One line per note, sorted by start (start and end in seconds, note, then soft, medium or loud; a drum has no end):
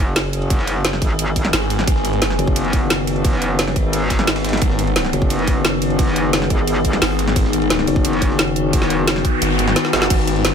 0.00 1.00 F#1 loud
0.00 10.54 D#3 medium
0.00 10.54 B3 medium
0.00 1.86 G#4 medium
0.00 sub drop medium
0.16 snare loud
0.16 closed hi-hat loud
0.16 ride medium
0.33 closed hi-hat medium
0.33 ride medium
0.42 ride soft
0.50 kick loud
0.50 closed hi-hat medium
0.50 ride medium
0.59 snare medium
0.67 closed hi-hat medium
0.67 ride medium
0.85 snare loud
0.85 closed hi-hat loud
0.85 ride medium
0.93 snare soft
0.93 snare medium
1.02 1.52 G#1 loud
1.02 kick loud
1.02 closed hi-hat medium
1.02 ride medium
1.19 closed hi-hat loud
1.19 ride medium
1.36 kick medium
1.36 closed hi-hat medium
1.36 ride medium
1.45 snare medium
1.45 ride soft
1.53 1.86 G#1 loud
1.53 snare loud
1.53 closed hi-hat medium
1.53 open hi-hat medium
1.62 snare medium
1.70 snare soft
1.70 closed hi-hat medium
1.70 ride medium
1.79 snare medium
1.87 2.38 G#1 loud
1.87 4.61 C#4 medium
1.87 kick loud
1.87 closed hi-hat medium
1.87 ride medium
1.96 snare soft
2.05 closed hi-hat medium
2.05 ride medium
2.13 ride soft
2.22 snare loud
2.22 closed hi-hat medium
2.22 ride medium
2.30 snare soft
2.39 3.75 F#1 loud
2.39 closed hi-hat medium
2.39 ride medium
2.47 kick loud
2.56 closed hi-hat medium
2.56 ride medium
2.65 ride soft
2.73 kick loud
2.73 closed hi-hat medium
2.73 ride medium
2.90 snare loud
2.90 closed hi-hat medium
2.90 ride medium
3.07 closed hi-hat medium
3.07 ride medium
3.16 ride soft
3.24 kick loud
3.24 closed hi-hat medium
3.24 ride medium
3.33 snare medium
3.42 closed hi-hat medium
3.42 ride medium
3.59 snare loud
3.59 closed hi-hat medium
3.59 ride medium
3.67 snare soft
3.76 4.60 G#1 loud
3.76 kick loud
3.76 closed hi-hat medium
3.76 ride medium
3.93 closed hi-hat medium
3.93 ride medium
4.10 kick medium
4.10 snare loud
4.10 closed hi-hat medium
4.10 ride medium
4.19 snare medium
4.19 ride soft
4.27 snare loud
4.27 closed hi-hat medium
4.27 ride medium
4.36 snare loud
4.36 ride medium
4.44 snare medium
4.44 closed hi-hat medium
4.44 ride medium
4.49 snare medium
4.49 ride medium
4.53 snare medium
4.53 ride medium
4.57 snare medium
4.57 ride medium
4.62 5.12 G#1 loud
4.62 7.35 G#4 medium
4.62 kick loud
4.62 closed hi-hat medium
4.62 ride medium
4.70 snare soft
4.79 closed hi-hat medium
4.79 ride medium
4.87 ride soft
4.96 snare loud
4.96 closed hi-hat medium
4.96 ride medium
5.05 snare soft
5.13 6.49 F#1 loud
5.13 closed hi-hat medium
5.13 ride medium
5.22 kick loud
5.30 closed hi-hat medium
5.30 ride medium
5.39 ride soft
5.47 kick loud
5.47 closed hi-hat medium
5.47 ride medium
5.65 snare loud
5.65 closed hi-hat medium
5.65 ride medium
5.82 closed hi-hat medium
5.82 ride medium
5.90 ride soft
5.99 kick loud
5.99 closed hi-hat medium
5.99 ride medium
6.08 snare medium
6.16 closed hi-hat medium
6.16 ride medium
6.33 snare loud
6.33 closed hi-hat loud
6.33 ride medium
6.42 snare soft
6.50 7.00 G#1 loud
6.50 kick loud
6.50 closed hi-hat medium
6.50 ride medium
6.67 closed hi-hat loud
6.67 ride medium
6.85 kick medium
6.85 closed hi-hat medium
6.85 ride medium
6.93 snare medium
6.93 ride soft
7.02 7.35 G#1 medium
7.02 snare loud
7.02 closed hi-hat medium
7.02 open hi-hat medium
7.10 snare medium
7.19 snare soft
7.19 closed hi-hat medium
7.19 ride medium
7.28 snare medium
7.36 7.86 G#1 loud
7.36 10.09 F#4 medium
7.36 kick loud
7.36 closed hi-hat medium
7.36 ride medium
7.45 snare soft
7.53 closed hi-hat medium
7.53 ride medium
7.62 ride soft
7.70 snare loud
7.70 closed hi-hat medium
7.70 ride medium
7.79 snare soft
7.87 9.23 F#1 loud
7.87 closed hi-hat medium
7.87 ride medium
7.96 kick loud
8.05 closed hi-hat loud
8.05 ride medium
8.13 ride soft
8.22 kick loud
8.22 closed hi-hat medium
8.22 ride medium
8.30 snare soft
8.39 snare loud
8.39 closed hi-hat medium
8.39 ride medium
8.48 ride soft
8.56 closed hi-hat medium
8.73 kick loud
8.73 closed hi-hat loud
8.73 ride medium
8.73 noise sweep medium
8.82 snare soft
8.82 snare medium
8.90 closed hi-hat medium
8.90 ride medium
9.08 snare loud
9.08 closed hi-hat loud
9.08 ride medium
9.16 snare soft
9.25 kick loud
9.25 closed hi-hat medium
9.25 ride medium
9.42 9.75 G#1 loud
9.42 closed hi-hat loud
9.42 ride medium
9.59 closed hi-hat medium
9.59 ride medium
9.67 snare medium
9.67 ride soft
9.76 snare loud
9.76 closed hi-hat loud
9.76 ride medium
9.85 snare medium
9.93 10.09 G#1 medium
9.93 snare medium
9.93 snare loud
9.93 closed hi-hat medium
9.93 ride medium
10.02 snare medium
10.10 10.54 G#1 loud
10.10 10.54 G#4 medium
10.10 kick loud
10.10 closed hi-hat loud
10.10 crash medium
10.10 ride medium
10.19 snare soft
10.27 closed hi-hat medium
10.27 ride medium
10.36 ride soft
10.45 snare loud
10.45 closed hi-hat loud
10.45 ride medium